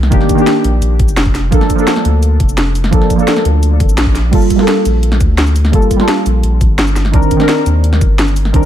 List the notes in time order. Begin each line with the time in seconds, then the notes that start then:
Already playing: C2 D#3 A#3 D4 G4
0.03 snare
0.10 F1 D#3 A#3 D4 G4, kick, closed hi-hat, shaker
0.21 snare
0.29 kick, closed hi-hat, shaker
0.35 D#3 A#3, shaker
0.39 D4 G4
0.47 snare, closed hi-hat, shaker
0.64 A#1, closed hi-hat
0.82 A#1, closed hi-hat, shaker
0.99 kick, closed hi-hat
1.08 F1, shaker
1.17 snare, closed hi-hat, shaker
1.26 kick
1.35 snare, open hi-hat, shaker
1.51 A#1 F3 A#3 D4 A4, kick, closed hi-hat, shaker
1.61 snare
1.70 kick, closed hi-hat, shaker
1.75 F3 A#3, shaker
1.80 D4 A4
1.87 snare, closed hi-hat, shaker
1.96 snare
2.05 D2, closed hi-hat
2.23 closed hi-hat, shaker
2.40 F1, kick, closed hi-hat
2.49 shaker
2.58 snare, closed hi-hat, shaker
2.75 open hi-hat, shaker
2.84 snare
2.91 A#1 F3 A#3 D4 A4, kick, closed hi-hat, shaker
3.02 snare
3.10 kick, closed hi-hat, shaker
3.16 F3 A#3, shaker
3.20 D4 A4
3.28 snare, closed hi-hat, shaker
3.37 snare
3.45 D2, closed hi-hat
3.63 closed hi-hat, shaker
3.80 F1, kick, closed hi-hat, shaker
3.89 A#1, shaker
3.98 snare, closed hi-hat, shaker
4.07 kick
4.15 snare, open hi-hat, shaker
4.31 G1 G3 A#3 F4 A4, kick, closed hi-hat, crash
4.42 shaker
4.50 kick, closed hi-hat, shaker
4.56 G3 A#3, snare
4.60 F4 A4
4.68 snare, closed hi-hat
4.85 A#1, closed hi-hat, shaker
5.03 closed hi-hat
5.12 snare
5.21 D2, kick, closed hi-hat, shaker
5.38 snare, closed hi-hat
5.47 shaker
5.56 open hi-hat, shaker
5.65 snare
5.72 G1 G3 A#3 F4 A4, kick, closed hi-hat
5.82 shaker
5.91 kick, closed hi-hat, shaker
5.96 G3 A#3, snare
6.01 F4 A4
6.08 snare, closed hi-hat
6.26 A#1, closed hi-hat, shaker
6.43 A#1, closed hi-hat
6.61 kick, closed hi-hat, shaker
6.70 G1
6.79 snare, closed hi-hat
6.88 shaker
6.96 snare, open hi-hat, shaker
7.05 snare
7.12 C2 D#3 C4 D4 A#4, kick, closed hi-hat
7.22 shaker
7.31 kick, closed hi-hat, shaker
7.36 D#3 C4, snare
7.41 D4 A#4
7.49 snare, closed hi-hat
7.66 D#2, closed hi-hat, shaker
7.84 closed hi-hat
7.93 snare
8.01 G1, kick, closed hi-hat, shaker
8.19 snare, closed hi-hat
8.28 shaker
8.36 open hi-hat, shaker
8.45 snare
8.52 C2 D#3 C4 D4 A#4, kick, closed hi-hat